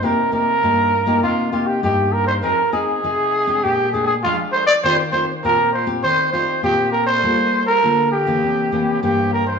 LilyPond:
<<
  \new Staff \with { instrumentName = "Trumpet" } { \time 4/4 \key c \minor \tempo 4 = 100 bes'8 bes'4. f'8 f'16 g'16 g'8 bes'16 c''16 | bes'8 aes'4. g'8 aes'16 aes'16 f'8 c''16 d''16 | c''8 c''8 bes'8 c''16 r16 c''8 c''8 g'8 bes'16 c''16~ | c''8. bes'8. g'4. g'8 bes'16 c''16 | }
  \new Staff \with { instrumentName = "Nylon-string guitar" } { \time 4/4 \key c \minor << { <bes ees' g'>16 r16 <bes ees' g'>16 r16 <bes ees' g'>8 r16 <bes ees' g'>8. <bes ees' g'>8 <bes ees' g'>4 | <c' ees' aes'>16 r16 <c' ees' aes'>8 <c' ees' aes'>8. <aes d' g'>8. <aes d' g'>16 r16 <aes d' g'>8. r16 | <c' f' g'>16 r16 <c' f' g'>16 r16 <c' f' g'>8 r16 <c' f' g'>8. <c' f' g'>8 <c' f' g'>4 | <bes f' a'>8. r16 <bes f' a'>8 r16 <e bes des'>8. <e bes des'>8 <e bes des'>8. r16 | } \\ { c4 g,4 c4 g,4 | f4 c4 bes,4 f4 | ees4 bes,4 ees4 bes,4 | g4 d4 c4 g,4 | } >> }
>>